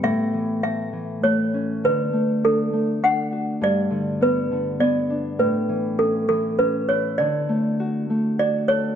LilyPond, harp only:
\new Staff \with { instrumentName = "Harp" } { \time 3/4 \key d \major \tempo 4 = 100 a,8 e8 a8 e8 a8 cis'8 | d8 a8 d'8 a8 d'8 fis'8 | g,8 d8 b8 d8 b8 d'8 | a,8 e8 cis'8 e8 cis'8 e'8 |
d8 a8 fis'8 a8 fis'8 a'8 | }